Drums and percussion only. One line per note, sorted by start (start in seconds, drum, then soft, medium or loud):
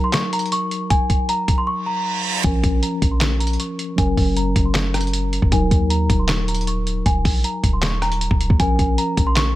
0.13 snare loud
0.13 clap loud
0.13 closed hi-hat medium
0.33 closed hi-hat medium
0.39 closed hi-hat medium
0.46 closed hi-hat soft
0.52 closed hi-hat medium
0.71 closed hi-hat medium
0.90 kick loud
0.90 closed hi-hat medium
1.10 kick medium
1.10 closed hi-hat medium
1.29 closed hi-hat medium
1.48 kick medium
1.48 closed hi-hat medium
2.44 kick loud
2.44 closed hi-hat medium
2.64 kick loud
2.64 closed hi-hat medium
2.83 closed hi-hat medium
3.02 kick medium
3.02 closed hi-hat medium
3.21 snare loud
3.21 clap loud
3.21 closed hi-hat medium
3.40 closed hi-hat medium
3.47 closed hi-hat medium
3.53 closed hi-hat soft
3.60 closed hi-hat medium
3.79 closed hi-hat medium
3.98 kick loud
3.98 closed hi-hat medium
4.17 kick loud
4.17 open hi-hat medium
4.37 closed hi-hat medium
4.56 kick medium
4.56 closed hi-hat medium
4.75 snare loud
4.75 clap loud
4.75 closed hi-hat medium
4.94 cross-stick loud
4.94 closed hi-hat medium
5.01 closed hi-hat medium
5.07 closed hi-hat soft
5.13 closed hi-hat medium
5.33 closed hi-hat medium
5.42 kick loud
5.52 kick loud
5.52 closed hi-hat medium
5.71 kick loud
5.71 closed hi-hat medium
5.90 closed hi-hat medium
6.10 kick medium
6.10 closed hi-hat medium
6.29 snare loud
6.29 clap loud
6.29 closed hi-hat medium
6.48 closed hi-hat medium
6.55 closed hi-hat medium
6.61 closed hi-hat soft
6.67 closed hi-hat medium
6.87 closed hi-hat medium
7.06 kick loud
7.06 closed hi-hat medium
7.25 kick loud
7.25 open hi-hat medium
7.44 closed hi-hat medium
7.64 kick medium
7.64 closed hi-hat medium
7.82 snare loud
7.82 clap loud
7.82 closed hi-hat medium
8.02 cross-stick loud
8.02 closed hi-hat medium
8.12 closed hi-hat medium
8.21 closed hi-hat medium
8.31 kick medium
8.41 closed hi-hat medium
8.50 kick loud
8.60 kick loud
8.60 closed hi-hat medium
8.79 kick medium
8.79 closed hi-hat medium
8.98 closed hi-hat medium
9.17 kick medium
9.17 closed hi-hat medium
9.36 snare loud
9.36 clap loud
9.36 closed hi-hat medium